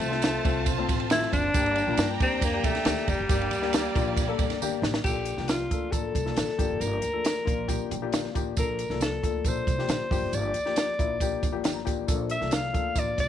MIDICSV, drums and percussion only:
0, 0, Header, 1, 2, 480
1, 0, Start_track
1, 0, Key_signature, -2, "minor"
1, 0, Tempo, 438917
1, 1689, Time_signature, 4, 2, 24, 8
1, 14527, End_track
2, 0, Start_track
2, 0, Title_t, "Drums"
2, 0, Note_on_c, 9, 51, 62
2, 15, Note_on_c, 9, 54, 55
2, 105, Note_off_c, 9, 51, 0
2, 125, Note_off_c, 9, 54, 0
2, 129, Note_on_c, 9, 38, 35
2, 238, Note_off_c, 9, 38, 0
2, 238, Note_on_c, 9, 54, 88
2, 244, Note_on_c, 9, 51, 71
2, 254, Note_on_c, 9, 63, 64
2, 261, Note_on_c, 9, 38, 116
2, 347, Note_off_c, 9, 54, 0
2, 353, Note_off_c, 9, 51, 0
2, 364, Note_off_c, 9, 63, 0
2, 370, Note_off_c, 9, 38, 0
2, 491, Note_on_c, 9, 36, 96
2, 492, Note_on_c, 9, 51, 62
2, 493, Note_on_c, 9, 54, 52
2, 600, Note_off_c, 9, 36, 0
2, 602, Note_off_c, 9, 51, 0
2, 603, Note_off_c, 9, 54, 0
2, 722, Note_on_c, 9, 54, 94
2, 723, Note_on_c, 9, 36, 85
2, 726, Note_on_c, 9, 51, 70
2, 745, Note_on_c, 9, 64, 69
2, 831, Note_off_c, 9, 54, 0
2, 832, Note_off_c, 9, 36, 0
2, 835, Note_off_c, 9, 51, 0
2, 854, Note_off_c, 9, 64, 0
2, 970, Note_on_c, 9, 36, 81
2, 973, Note_on_c, 9, 51, 76
2, 980, Note_on_c, 9, 54, 57
2, 980, Note_on_c, 9, 62, 50
2, 980, Note_on_c, 9, 64, 76
2, 1079, Note_off_c, 9, 36, 0
2, 1083, Note_off_c, 9, 51, 0
2, 1089, Note_off_c, 9, 54, 0
2, 1089, Note_off_c, 9, 62, 0
2, 1089, Note_off_c, 9, 64, 0
2, 1091, Note_on_c, 9, 51, 46
2, 1200, Note_off_c, 9, 51, 0
2, 1202, Note_on_c, 9, 51, 76
2, 1215, Note_on_c, 9, 38, 121
2, 1215, Note_on_c, 9, 63, 75
2, 1218, Note_on_c, 9, 54, 92
2, 1312, Note_off_c, 9, 51, 0
2, 1324, Note_off_c, 9, 38, 0
2, 1325, Note_off_c, 9, 63, 0
2, 1327, Note_off_c, 9, 54, 0
2, 1337, Note_on_c, 9, 38, 38
2, 1446, Note_off_c, 9, 38, 0
2, 1449, Note_on_c, 9, 63, 65
2, 1452, Note_on_c, 9, 36, 82
2, 1455, Note_on_c, 9, 51, 63
2, 1461, Note_on_c, 9, 54, 57
2, 1558, Note_off_c, 9, 63, 0
2, 1562, Note_off_c, 9, 36, 0
2, 1565, Note_off_c, 9, 51, 0
2, 1571, Note_off_c, 9, 54, 0
2, 1682, Note_on_c, 9, 62, 50
2, 1687, Note_on_c, 9, 51, 70
2, 1690, Note_on_c, 9, 36, 108
2, 1695, Note_on_c, 9, 54, 100
2, 1792, Note_off_c, 9, 62, 0
2, 1796, Note_off_c, 9, 51, 0
2, 1799, Note_off_c, 9, 36, 0
2, 1805, Note_off_c, 9, 54, 0
2, 1817, Note_on_c, 9, 51, 38
2, 1920, Note_off_c, 9, 51, 0
2, 1920, Note_on_c, 9, 51, 59
2, 1947, Note_on_c, 9, 54, 48
2, 2029, Note_off_c, 9, 51, 0
2, 2056, Note_off_c, 9, 54, 0
2, 2158, Note_on_c, 9, 51, 74
2, 2164, Note_on_c, 9, 54, 100
2, 2167, Note_on_c, 9, 63, 77
2, 2176, Note_on_c, 9, 38, 114
2, 2268, Note_off_c, 9, 51, 0
2, 2273, Note_off_c, 9, 54, 0
2, 2276, Note_off_c, 9, 63, 0
2, 2285, Note_off_c, 9, 38, 0
2, 2409, Note_on_c, 9, 62, 34
2, 2410, Note_on_c, 9, 36, 105
2, 2411, Note_on_c, 9, 51, 63
2, 2428, Note_on_c, 9, 54, 49
2, 2518, Note_off_c, 9, 62, 0
2, 2520, Note_off_c, 9, 36, 0
2, 2520, Note_off_c, 9, 51, 0
2, 2537, Note_off_c, 9, 54, 0
2, 2641, Note_on_c, 9, 36, 88
2, 2646, Note_on_c, 9, 51, 79
2, 2647, Note_on_c, 9, 54, 93
2, 2750, Note_off_c, 9, 36, 0
2, 2756, Note_off_c, 9, 51, 0
2, 2756, Note_off_c, 9, 54, 0
2, 2884, Note_on_c, 9, 36, 80
2, 2888, Note_on_c, 9, 51, 75
2, 2890, Note_on_c, 9, 54, 57
2, 2898, Note_on_c, 9, 62, 55
2, 2898, Note_on_c, 9, 64, 74
2, 2994, Note_off_c, 9, 36, 0
2, 2998, Note_off_c, 9, 51, 0
2, 2999, Note_off_c, 9, 54, 0
2, 3005, Note_on_c, 9, 51, 48
2, 3008, Note_off_c, 9, 62, 0
2, 3008, Note_off_c, 9, 64, 0
2, 3011, Note_on_c, 9, 38, 39
2, 3114, Note_off_c, 9, 51, 0
2, 3116, Note_on_c, 9, 51, 79
2, 3120, Note_off_c, 9, 38, 0
2, 3129, Note_on_c, 9, 38, 118
2, 3132, Note_on_c, 9, 63, 84
2, 3133, Note_on_c, 9, 54, 96
2, 3225, Note_off_c, 9, 51, 0
2, 3238, Note_off_c, 9, 38, 0
2, 3242, Note_off_c, 9, 63, 0
2, 3243, Note_off_c, 9, 54, 0
2, 3248, Note_on_c, 9, 38, 43
2, 3357, Note_off_c, 9, 38, 0
2, 3364, Note_on_c, 9, 51, 63
2, 3365, Note_on_c, 9, 36, 73
2, 3365, Note_on_c, 9, 63, 58
2, 3382, Note_on_c, 9, 54, 55
2, 3474, Note_off_c, 9, 36, 0
2, 3474, Note_off_c, 9, 51, 0
2, 3474, Note_off_c, 9, 63, 0
2, 3491, Note_off_c, 9, 54, 0
2, 3601, Note_on_c, 9, 51, 73
2, 3602, Note_on_c, 9, 62, 57
2, 3603, Note_on_c, 9, 36, 117
2, 3612, Note_on_c, 9, 54, 101
2, 3711, Note_off_c, 9, 51, 0
2, 3712, Note_off_c, 9, 36, 0
2, 3712, Note_off_c, 9, 62, 0
2, 3721, Note_off_c, 9, 54, 0
2, 3734, Note_on_c, 9, 51, 41
2, 3838, Note_off_c, 9, 51, 0
2, 3838, Note_on_c, 9, 51, 64
2, 3858, Note_on_c, 9, 54, 54
2, 3947, Note_off_c, 9, 51, 0
2, 3962, Note_on_c, 9, 38, 36
2, 3967, Note_off_c, 9, 54, 0
2, 4072, Note_off_c, 9, 38, 0
2, 4077, Note_on_c, 9, 51, 71
2, 4085, Note_on_c, 9, 54, 96
2, 4086, Note_on_c, 9, 63, 70
2, 4094, Note_on_c, 9, 38, 115
2, 4186, Note_off_c, 9, 51, 0
2, 4195, Note_off_c, 9, 54, 0
2, 4196, Note_off_c, 9, 63, 0
2, 4203, Note_off_c, 9, 38, 0
2, 4325, Note_on_c, 9, 36, 101
2, 4329, Note_on_c, 9, 51, 64
2, 4329, Note_on_c, 9, 62, 35
2, 4339, Note_on_c, 9, 54, 52
2, 4435, Note_off_c, 9, 36, 0
2, 4438, Note_off_c, 9, 51, 0
2, 4438, Note_off_c, 9, 62, 0
2, 4448, Note_off_c, 9, 54, 0
2, 4556, Note_on_c, 9, 36, 91
2, 4561, Note_on_c, 9, 54, 87
2, 4564, Note_on_c, 9, 51, 70
2, 4574, Note_on_c, 9, 64, 72
2, 4665, Note_off_c, 9, 36, 0
2, 4671, Note_off_c, 9, 54, 0
2, 4673, Note_off_c, 9, 51, 0
2, 4684, Note_off_c, 9, 64, 0
2, 4799, Note_on_c, 9, 51, 70
2, 4800, Note_on_c, 9, 36, 87
2, 4809, Note_on_c, 9, 54, 53
2, 4816, Note_on_c, 9, 62, 57
2, 4816, Note_on_c, 9, 64, 71
2, 4908, Note_off_c, 9, 51, 0
2, 4909, Note_off_c, 9, 36, 0
2, 4918, Note_off_c, 9, 54, 0
2, 4921, Note_on_c, 9, 51, 49
2, 4926, Note_off_c, 9, 62, 0
2, 4926, Note_off_c, 9, 64, 0
2, 4927, Note_on_c, 9, 38, 39
2, 5030, Note_off_c, 9, 51, 0
2, 5036, Note_off_c, 9, 38, 0
2, 5051, Note_on_c, 9, 54, 100
2, 5056, Note_on_c, 9, 63, 80
2, 5161, Note_off_c, 9, 54, 0
2, 5165, Note_off_c, 9, 63, 0
2, 5286, Note_on_c, 9, 38, 86
2, 5289, Note_on_c, 9, 63, 60
2, 5300, Note_on_c, 9, 54, 62
2, 5396, Note_off_c, 9, 38, 0
2, 5398, Note_off_c, 9, 63, 0
2, 5401, Note_on_c, 9, 38, 95
2, 5410, Note_off_c, 9, 54, 0
2, 5509, Note_on_c, 9, 49, 76
2, 5510, Note_off_c, 9, 38, 0
2, 5517, Note_on_c, 9, 36, 93
2, 5523, Note_on_c, 9, 62, 50
2, 5532, Note_on_c, 9, 54, 84
2, 5619, Note_off_c, 9, 49, 0
2, 5626, Note_off_c, 9, 36, 0
2, 5632, Note_off_c, 9, 62, 0
2, 5641, Note_off_c, 9, 54, 0
2, 5745, Note_on_c, 9, 42, 69
2, 5777, Note_on_c, 9, 54, 47
2, 5855, Note_off_c, 9, 42, 0
2, 5879, Note_on_c, 9, 38, 33
2, 5886, Note_off_c, 9, 54, 0
2, 5988, Note_off_c, 9, 38, 0
2, 5991, Note_on_c, 9, 42, 73
2, 6003, Note_on_c, 9, 54, 88
2, 6006, Note_on_c, 9, 63, 71
2, 6009, Note_on_c, 9, 38, 110
2, 6101, Note_off_c, 9, 42, 0
2, 6112, Note_off_c, 9, 54, 0
2, 6116, Note_off_c, 9, 63, 0
2, 6118, Note_off_c, 9, 38, 0
2, 6245, Note_on_c, 9, 36, 81
2, 6245, Note_on_c, 9, 42, 64
2, 6251, Note_on_c, 9, 54, 47
2, 6354, Note_off_c, 9, 42, 0
2, 6355, Note_off_c, 9, 36, 0
2, 6361, Note_off_c, 9, 54, 0
2, 6478, Note_on_c, 9, 36, 81
2, 6481, Note_on_c, 9, 42, 78
2, 6484, Note_on_c, 9, 54, 80
2, 6588, Note_off_c, 9, 36, 0
2, 6591, Note_off_c, 9, 42, 0
2, 6593, Note_off_c, 9, 54, 0
2, 6726, Note_on_c, 9, 36, 67
2, 6729, Note_on_c, 9, 42, 79
2, 6730, Note_on_c, 9, 62, 43
2, 6730, Note_on_c, 9, 64, 62
2, 6731, Note_on_c, 9, 54, 53
2, 6835, Note_off_c, 9, 36, 0
2, 6838, Note_off_c, 9, 42, 0
2, 6840, Note_off_c, 9, 54, 0
2, 6840, Note_off_c, 9, 62, 0
2, 6840, Note_off_c, 9, 64, 0
2, 6852, Note_on_c, 9, 38, 36
2, 6960, Note_on_c, 9, 42, 82
2, 6961, Note_off_c, 9, 38, 0
2, 6969, Note_on_c, 9, 63, 72
2, 6971, Note_on_c, 9, 54, 87
2, 6973, Note_on_c, 9, 38, 97
2, 7069, Note_off_c, 9, 42, 0
2, 7078, Note_off_c, 9, 63, 0
2, 7081, Note_off_c, 9, 54, 0
2, 7082, Note_off_c, 9, 38, 0
2, 7092, Note_on_c, 9, 38, 37
2, 7201, Note_off_c, 9, 38, 0
2, 7207, Note_on_c, 9, 36, 89
2, 7210, Note_on_c, 9, 42, 69
2, 7214, Note_on_c, 9, 63, 56
2, 7219, Note_on_c, 9, 54, 56
2, 7316, Note_off_c, 9, 36, 0
2, 7319, Note_off_c, 9, 42, 0
2, 7323, Note_off_c, 9, 63, 0
2, 7328, Note_off_c, 9, 54, 0
2, 7447, Note_on_c, 9, 42, 69
2, 7450, Note_on_c, 9, 54, 87
2, 7456, Note_on_c, 9, 62, 44
2, 7556, Note_off_c, 9, 42, 0
2, 7560, Note_off_c, 9, 54, 0
2, 7565, Note_off_c, 9, 62, 0
2, 7676, Note_on_c, 9, 42, 64
2, 7703, Note_on_c, 9, 54, 47
2, 7785, Note_off_c, 9, 42, 0
2, 7812, Note_off_c, 9, 54, 0
2, 7923, Note_on_c, 9, 42, 84
2, 7927, Note_on_c, 9, 54, 86
2, 7931, Note_on_c, 9, 63, 59
2, 7941, Note_on_c, 9, 38, 104
2, 8033, Note_off_c, 9, 42, 0
2, 8036, Note_off_c, 9, 54, 0
2, 8040, Note_off_c, 9, 63, 0
2, 8050, Note_off_c, 9, 38, 0
2, 8173, Note_on_c, 9, 36, 89
2, 8173, Note_on_c, 9, 62, 34
2, 8175, Note_on_c, 9, 42, 73
2, 8188, Note_on_c, 9, 54, 45
2, 8282, Note_off_c, 9, 36, 0
2, 8282, Note_off_c, 9, 62, 0
2, 8285, Note_off_c, 9, 42, 0
2, 8298, Note_off_c, 9, 54, 0
2, 8404, Note_on_c, 9, 36, 74
2, 8406, Note_on_c, 9, 42, 78
2, 8412, Note_on_c, 9, 54, 78
2, 8414, Note_on_c, 9, 64, 63
2, 8514, Note_off_c, 9, 36, 0
2, 8515, Note_off_c, 9, 42, 0
2, 8521, Note_off_c, 9, 54, 0
2, 8523, Note_off_c, 9, 64, 0
2, 8654, Note_on_c, 9, 42, 84
2, 8654, Note_on_c, 9, 62, 44
2, 8654, Note_on_c, 9, 64, 70
2, 8658, Note_on_c, 9, 54, 45
2, 8763, Note_off_c, 9, 42, 0
2, 8763, Note_off_c, 9, 62, 0
2, 8763, Note_off_c, 9, 64, 0
2, 8768, Note_off_c, 9, 54, 0
2, 8886, Note_on_c, 9, 42, 84
2, 8893, Note_on_c, 9, 63, 69
2, 8898, Note_on_c, 9, 38, 109
2, 8899, Note_on_c, 9, 54, 89
2, 8995, Note_off_c, 9, 42, 0
2, 9002, Note_off_c, 9, 63, 0
2, 9008, Note_off_c, 9, 38, 0
2, 9008, Note_off_c, 9, 54, 0
2, 9018, Note_on_c, 9, 38, 35
2, 9128, Note_off_c, 9, 38, 0
2, 9131, Note_on_c, 9, 63, 52
2, 9135, Note_on_c, 9, 36, 72
2, 9135, Note_on_c, 9, 42, 76
2, 9140, Note_on_c, 9, 54, 55
2, 9240, Note_off_c, 9, 63, 0
2, 9245, Note_off_c, 9, 36, 0
2, 9245, Note_off_c, 9, 42, 0
2, 9250, Note_off_c, 9, 54, 0
2, 9363, Note_on_c, 9, 62, 47
2, 9368, Note_on_c, 9, 54, 92
2, 9371, Note_on_c, 9, 42, 87
2, 9373, Note_on_c, 9, 36, 98
2, 9473, Note_off_c, 9, 62, 0
2, 9477, Note_off_c, 9, 54, 0
2, 9481, Note_off_c, 9, 42, 0
2, 9483, Note_off_c, 9, 36, 0
2, 9610, Note_on_c, 9, 42, 68
2, 9627, Note_on_c, 9, 54, 48
2, 9719, Note_off_c, 9, 42, 0
2, 9735, Note_on_c, 9, 38, 33
2, 9736, Note_off_c, 9, 54, 0
2, 9844, Note_off_c, 9, 38, 0
2, 9847, Note_on_c, 9, 63, 64
2, 9852, Note_on_c, 9, 42, 80
2, 9852, Note_on_c, 9, 54, 91
2, 9870, Note_on_c, 9, 38, 99
2, 9956, Note_off_c, 9, 63, 0
2, 9961, Note_off_c, 9, 54, 0
2, 9962, Note_off_c, 9, 42, 0
2, 9979, Note_off_c, 9, 38, 0
2, 10093, Note_on_c, 9, 62, 31
2, 10100, Note_on_c, 9, 36, 88
2, 10104, Note_on_c, 9, 42, 70
2, 10109, Note_on_c, 9, 54, 46
2, 10202, Note_off_c, 9, 62, 0
2, 10209, Note_off_c, 9, 36, 0
2, 10213, Note_off_c, 9, 42, 0
2, 10218, Note_off_c, 9, 54, 0
2, 10330, Note_on_c, 9, 36, 87
2, 10330, Note_on_c, 9, 42, 82
2, 10340, Note_on_c, 9, 54, 82
2, 10439, Note_off_c, 9, 42, 0
2, 10440, Note_off_c, 9, 36, 0
2, 10450, Note_off_c, 9, 54, 0
2, 10576, Note_on_c, 9, 36, 82
2, 10581, Note_on_c, 9, 42, 77
2, 10581, Note_on_c, 9, 62, 49
2, 10581, Note_on_c, 9, 64, 71
2, 10583, Note_on_c, 9, 54, 53
2, 10686, Note_off_c, 9, 36, 0
2, 10690, Note_off_c, 9, 42, 0
2, 10690, Note_off_c, 9, 62, 0
2, 10690, Note_off_c, 9, 64, 0
2, 10692, Note_off_c, 9, 54, 0
2, 10706, Note_on_c, 9, 38, 35
2, 10810, Note_on_c, 9, 42, 88
2, 10816, Note_off_c, 9, 38, 0
2, 10822, Note_on_c, 9, 54, 86
2, 10823, Note_on_c, 9, 38, 105
2, 10823, Note_on_c, 9, 63, 75
2, 10920, Note_off_c, 9, 42, 0
2, 10931, Note_off_c, 9, 54, 0
2, 10932, Note_off_c, 9, 63, 0
2, 10933, Note_off_c, 9, 38, 0
2, 11055, Note_on_c, 9, 63, 55
2, 11056, Note_on_c, 9, 36, 90
2, 11062, Note_on_c, 9, 46, 46
2, 11072, Note_on_c, 9, 54, 61
2, 11165, Note_off_c, 9, 63, 0
2, 11166, Note_off_c, 9, 36, 0
2, 11171, Note_off_c, 9, 46, 0
2, 11181, Note_off_c, 9, 54, 0
2, 11289, Note_on_c, 9, 62, 52
2, 11294, Note_on_c, 9, 54, 86
2, 11298, Note_on_c, 9, 42, 77
2, 11398, Note_off_c, 9, 62, 0
2, 11404, Note_off_c, 9, 54, 0
2, 11408, Note_off_c, 9, 42, 0
2, 11526, Note_on_c, 9, 42, 64
2, 11550, Note_on_c, 9, 54, 47
2, 11635, Note_off_c, 9, 42, 0
2, 11657, Note_on_c, 9, 38, 32
2, 11659, Note_off_c, 9, 54, 0
2, 11767, Note_off_c, 9, 38, 0
2, 11768, Note_on_c, 9, 42, 85
2, 11770, Note_on_c, 9, 54, 85
2, 11776, Note_on_c, 9, 63, 62
2, 11785, Note_on_c, 9, 38, 103
2, 11877, Note_off_c, 9, 42, 0
2, 11879, Note_off_c, 9, 54, 0
2, 11885, Note_off_c, 9, 63, 0
2, 11895, Note_off_c, 9, 38, 0
2, 12017, Note_on_c, 9, 62, 31
2, 12021, Note_on_c, 9, 36, 92
2, 12024, Note_on_c, 9, 42, 73
2, 12034, Note_on_c, 9, 54, 48
2, 12126, Note_off_c, 9, 62, 0
2, 12130, Note_off_c, 9, 36, 0
2, 12134, Note_off_c, 9, 42, 0
2, 12143, Note_off_c, 9, 54, 0
2, 12253, Note_on_c, 9, 36, 81
2, 12257, Note_on_c, 9, 42, 83
2, 12259, Note_on_c, 9, 54, 81
2, 12259, Note_on_c, 9, 64, 64
2, 12363, Note_off_c, 9, 36, 0
2, 12367, Note_off_c, 9, 42, 0
2, 12368, Note_off_c, 9, 54, 0
2, 12369, Note_off_c, 9, 64, 0
2, 12499, Note_on_c, 9, 36, 79
2, 12500, Note_on_c, 9, 54, 55
2, 12504, Note_on_c, 9, 42, 75
2, 12504, Note_on_c, 9, 62, 49
2, 12504, Note_on_c, 9, 64, 66
2, 12608, Note_off_c, 9, 36, 0
2, 12609, Note_off_c, 9, 54, 0
2, 12613, Note_off_c, 9, 42, 0
2, 12613, Note_off_c, 9, 62, 0
2, 12613, Note_off_c, 9, 64, 0
2, 12730, Note_on_c, 9, 42, 78
2, 12740, Note_on_c, 9, 54, 96
2, 12743, Note_on_c, 9, 38, 111
2, 12744, Note_on_c, 9, 63, 67
2, 12839, Note_off_c, 9, 42, 0
2, 12849, Note_off_c, 9, 54, 0
2, 12852, Note_off_c, 9, 38, 0
2, 12854, Note_off_c, 9, 63, 0
2, 12974, Note_on_c, 9, 63, 54
2, 12976, Note_on_c, 9, 54, 57
2, 12979, Note_on_c, 9, 36, 75
2, 12982, Note_on_c, 9, 42, 72
2, 13083, Note_off_c, 9, 63, 0
2, 13086, Note_off_c, 9, 54, 0
2, 13088, Note_off_c, 9, 36, 0
2, 13091, Note_off_c, 9, 42, 0
2, 13213, Note_on_c, 9, 54, 91
2, 13216, Note_on_c, 9, 36, 102
2, 13217, Note_on_c, 9, 42, 85
2, 13217, Note_on_c, 9, 62, 46
2, 13323, Note_off_c, 9, 54, 0
2, 13325, Note_off_c, 9, 36, 0
2, 13326, Note_off_c, 9, 42, 0
2, 13326, Note_off_c, 9, 62, 0
2, 13446, Note_on_c, 9, 42, 61
2, 13461, Note_on_c, 9, 54, 50
2, 13556, Note_off_c, 9, 42, 0
2, 13570, Note_off_c, 9, 54, 0
2, 13574, Note_on_c, 9, 38, 32
2, 13683, Note_off_c, 9, 38, 0
2, 13683, Note_on_c, 9, 42, 85
2, 13693, Note_on_c, 9, 54, 96
2, 13693, Note_on_c, 9, 63, 64
2, 13700, Note_on_c, 9, 38, 109
2, 13792, Note_off_c, 9, 42, 0
2, 13802, Note_off_c, 9, 63, 0
2, 13803, Note_off_c, 9, 54, 0
2, 13809, Note_off_c, 9, 38, 0
2, 13937, Note_on_c, 9, 36, 84
2, 13939, Note_on_c, 9, 42, 71
2, 13939, Note_on_c, 9, 62, 30
2, 13951, Note_on_c, 9, 54, 43
2, 14046, Note_off_c, 9, 36, 0
2, 14048, Note_off_c, 9, 42, 0
2, 14049, Note_off_c, 9, 62, 0
2, 14060, Note_off_c, 9, 54, 0
2, 14167, Note_on_c, 9, 54, 92
2, 14168, Note_on_c, 9, 36, 91
2, 14173, Note_on_c, 9, 42, 84
2, 14277, Note_off_c, 9, 54, 0
2, 14278, Note_off_c, 9, 36, 0
2, 14282, Note_off_c, 9, 42, 0
2, 14414, Note_on_c, 9, 36, 71
2, 14416, Note_on_c, 9, 42, 84
2, 14422, Note_on_c, 9, 62, 48
2, 14422, Note_on_c, 9, 64, 67
2, 14427, Note_on_c, 9, 54, 50
2, 14523, Note_off_c, 9, 36, 0
2, 14525, Note_off_c, 9, 42, 0
2, 14527, Note_off_c, 9, 54, 0
2, 14527, Note_off_c, 9, 62, 0
2, 14527, Note_off_c, 9, 64, 0
2, 14527, End_track
0, 0, End_of_file